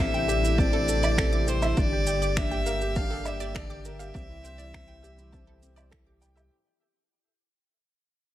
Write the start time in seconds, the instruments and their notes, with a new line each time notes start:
Already playing: sub bass A1, string section C3 G3 A3 D4, upright piano E4 G4 A4
0.00 upright piano C4, violin E5, finger snap, shaker
0.13 upright piano E4, synth arpeggio sound G5
0.28 upright piano G4, synth arpeggio sound E5, shaker
0.43 upright piano E4, shaker
0.58 upright piano C4, violin D5, synth arpeggio sound A5, kick, shaker
0.73 upright piano E4, synth arpeggio sound A4
0.88 upright piano A4, shaker
1.03 upright piano E4, synth arpeggio sound D5, low woodblock, shaker
1.18 upright piano C4, synth arpeggio sound A4, finger snap, kick, shaker
1.33 upright piano E4, synth arpeggio sound D6
1.47 upright piano G4, violin C5, shaker
1.62 upright piano E4, synth arpeggio sound E5, low woodblock, shaker
1.77 sub bass G1, string section D3 A#3 G4, upright piano D4, synth arpeggio sound D5, violin D5, kick, shaker
1.93 upright piano G4
2.07 upright piano D5, synth arpeggio sound G5, shaker
2.22 upright piano G4, synth arpeggio sound D5, shaker
2.36 upright piano D4, violin E5, finger snap, kick, shaker
2.51 upright piano G4, synth arpeggio sound G5
2.66 upright piano A#4, synth arpeggio sound F5, shaker
2.81 upright piano G4, shaker
2.96 upright piano D4, violin F5, synth arpeggio sound A5, kick, shaker
3.11 upright piano G4, synth arpeggio sound A4
3.25 upright piano D5, violin E5, low woodblock, shaker
3.40 upright piano G4, synth arpeggio sound D5, shaker
3.55 upright piano D4, synth arpeggio sound A4, violin D5, finger snap, kick, shaker
3.70 upright piano G4, synth arpeggio sound D6
3.85 upright piano A#4, violin E5, shaker
3.99 upright piano G4, synth arpeggio sound F5, shaker
4.14 sub bass C2, string section E3 G3 C4, upright piano C4, synth arpeggio sound D5, kick, shaker
4.29 upright piano E4
4.44 upright piano C5, synth arpeggio sound G5, shaker
4.58 upright piano E4, synth arpeggio sound D5, shaker
4.74 upright piano C4, finger snap, kick, shaker
4.88 upright piano E4, synth arpeggio sound G5
5.03 upright piano G4, synth arpeggio sound E5, shaker
5.18 upright piano E4, shaker
5.32 upright piano C4, synth arpeggio sound A5, kick, shaker
5.47 upright piano E4, synth arpeggio sound A4
5.62 upright piano C4, shaker
5.76 upright piano C5, synth arpeggio sound D5, low woodblock, shaker
5.91 upright piano E4, synth arpeggio sound A4, finger snap, kick, shaker
6.06 upright piano G4, synth arpeggio sound D6
6.21 upright piano G5, shaker
6.36 upright piano G4, synth arpeggio sound E5, low woodblock, shaker